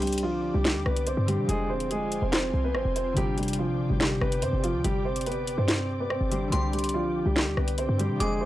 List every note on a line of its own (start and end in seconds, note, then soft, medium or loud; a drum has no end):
0.00 0.51 C2 loud
0.00 1.24 D3 medium
0.00 1.26 G3 medium
0.00 0.22 G3 medium
0.00 1.27 C4 medium
0.00 1.28 G4 medium
0.00 1.47 G4 medium
0.00 0.22 G4 medium
0.00 1.29 C5 medium
0.00 1.47 D5 medium
0.00 6.48 G5 medium
0.00 1.47 D6 loud
0.00 closed hi-hat soft
0.07 closed hi-hat medium
0.12 closed hi-hat medium
0.18 closed hi-hat medium
0.23 0.53 F3 medium
0.23 0.52 F4 loud
0.54 0.77 C2 loud
0.54 0.64 G3 medium
0.54 0.63 G4 medium
0.65 0.85 G3 medium
0.65 0.84 G4 medium
0.65 snare loud
0.65 clap medium
0.75 0.85 D#2 loud
0.86 1.16 C2 loud
0.86 1.06 B3 medium
0.86 1.06 B4 medium
0.86 cross-stick loud
0.97 closed hi-hat medium
1.07 1.27 C4 medium
1.07 1.27 C5 medium
1.07 closed hi-hat medium
1.17 1.40 G2 loud
1.26 1.54 D3 medium
1.26 1.54 G3 soft
1.26 1.48 G3 medium
1.26 1.48 C4 soft
1.26 1.47 G4 medium
1.26 1.49 G4 soft
1.26 closed hi-hat medium
1.30 1.50 C5 medium
1.38 1.48 C3 loud
1.45 3.22 F3 medium
1.45 3.22 G#3 medium
1.49 2.19 F1 loud
1.49 1.69 G#3 medium
1.49 4.49 C4 medium
1.49 3.15 F4 medium
1.49 1.68 G#4 loud
1.49 3.21 G#4 medium
1.49 3.15 C5 medium
1.49 3.15 G#5 medium
1.49 closed hi-hat medium
1.53 3.51 C5 medium
1.70 1.90 C4 medium
1.70 1.89 C5 medium
1.80 closed hi-hat medium
1.91 2.21 G#3 medium
1.91 2.20 G#4 medium
1.91 closed hi-hat medium
2.12 closed hi-hat medium
2.22 2.52 F1 loud
2.22 2.32 C4 medium
2.22 2.31 C5 medium
2.33 2.63 C4 medium
2.33 2.62 C5 medium
2.33 snare loud
2.33 clap medium
2.33 closed hi-hat medium
2.54 2.76 C2 loud
2.64 2.74 B3 medium
2.64 2.74 B4 medium
2.75 2.85 G#1 loud
2.75 2.95 C4 medium
2.75 2.94 C5 medium
2.75 cross-stick loud
2.85 3.15 F1 loud
2.96 3.16 C4 medium
2.96 3.15 C5 medium
2.96 closed hi-hat medium
3.13 3.71 G1 loud
3.13 6.28 D3 medium
3.13 6.29 G3 medium
3.17 6.36 C3 medium
3.17 3.37 G3 medium
3.17 6.49 G4 medium
3.17 3.36 G4 loud
3.17 6.28 G4 medium
3.17 8.16 D5 medium
3.17 8.16 D6 loud
3.17 closed hi-hat medium
3.21 6.29 D5 medium
3.38 3.58 G3 medium
3.38 3.57 G4 medium
3.38 closed hi-hat soft
3.43 closed hi-hat medium
3.48 closed hi-hat medium
3.53 closed hi-hat medium
3.59 3.89 F3 medium
3.59 3.88 F4 medium
3.69 3.81 B1 loud
3.80 3.89 G1 loud
3.90 4.20 G1 loud
3.90 4.00 G3 medium
3.90 3.99 G4 medium
4.00 4.20 G3 medium
4.00 4.20 G4 medium
4.00 snare loud
4.00 clap medium
4.21 4.44 G1 loud
4.21 4.41 B3 medium
4.21 4.41 B4 medium
4.21 cross-stick loud
4.32 closed hi-hat medium
4.42 4.52 G2 loud
4.42 4.62 C4 medium
4.42 4.62 C5 medium
4.42 closed hi-hat medium
4.53 4.75 G1 loud
4.63 4.83 F3 medium
4.63 4.83 F4 medium
4.63 closed hi-hat medium
4.74 4.84 D2 loud
4.84 5.55 G1 loud
4.84 5.04 G3 medium
4.84 5.04 G4 loud
4.84 closed hi-hat medium
5.05 5.25 C4 medium
5.05 5.25 C5 medium
5.16 closed hi-hat medium
5.21 closed hi-hat medium
5.26 5.56 B3 medium
5.26 5.56 B4 medium
5.26 closed hi-hat medium
5.32 closed hi-hat soft
5.47 closed hi-hat medium
5.58 6.18 G2 loud
5.58 5.68 C4 medium
5.58 5.67 C5 medium
5.68 5.98 C4 medium
5.68 5.98 C5 medium
5.68 snare loud
5.68 clap medium
5.68 closed hi-hat medium
6.00 6.10 B3 medium
6.00 6.10 B4 medium
6.10 6.30 C4 medium
6.10 6.30 C5 medium
6.10 cross-stick loud
6.21 6.51 G1 loud
6.29 6.47 D3 medium
6.29 6.49 G3 soft
6.29 6.51 G3 medium
6.29 6.51 C4 soft
6.29 6.51 G4 medium
6.29 6.53 G4 soft
6.29 closed hi-hat medium
6.33 6.53 C5 medium
6.48 7.96 D3 medium
6.48 7.97 G3 medium
6.52 7.23 C2 loud
6.52 6.72 G3 medium
6.52 7.99 C4 medium
6.52 6.72 G4 loud
6.52 8.18 G4 medium
6.52 8.00 G4 medium
6.52 8.45 G5 medium
6.52 6.92 C6 loud
6.52 closed hi-hat medium
6.56 8.01 C5 medium
6.73 6.93 G3 medium
6.73 6.93 G4 medium
6.73 closed hi-hat soft
6.79 closed hi-hat medium
6.84 closed hi-hat medium
6.89 closed hi-hat medium
6.94 7.24 F3 medium
6.94 7.24 F4 loud
7.26 7.48 C2 loud
7.26 7.36 G3 medium
7.26 7.35 G4 medium
7.36 7.56 G3 medium
7.36 7.56 G4 medium
7.36 snare loud
7.36 clap medium
7.47 7.57 D#2 loud
7.57 7.87 C2 loud
7.57 7.77 B3 medium
7.57 7.77 B4 medium
7.57 cross-stick loud
7.68 closed hi-hat medium
7.78 7.98 C4 medium
7.78 7.98 C5 medium
7.78 closed hi-hat medium
7.89 8.11 G2 loud
7.97 8.25 D3 medium
7.97 8.25 G3 soft
7.97 8.19 G3 medium
7.97 8.19 C4 soft
7.97 8.19 G4 medium
7.97 8.21 G4 soft
7.97 closed hi-hat medium
8.01 8.21 C5 medium
8.10 8.20 C3 loud
8.16 8.45 F3 medium
8.16 8.45 G#3 medium
8.20 8.45 F1 loud
8.20 8.40 G#3 medium
8.20 8.45 C4 medium
8.20 8.45 F4 medium
8.20 8.40 G#4 loud
8.20 8.45 G#4 medium
8.20 8.45 C5 medium
8.20 8.45 G#5 medium
8.20 8.45 D6 loud
8.20 closed hi-hat medium
8.24 8.45 C5 medium
8.41 8.45 C4 medium
8.41 8.45 C5 medium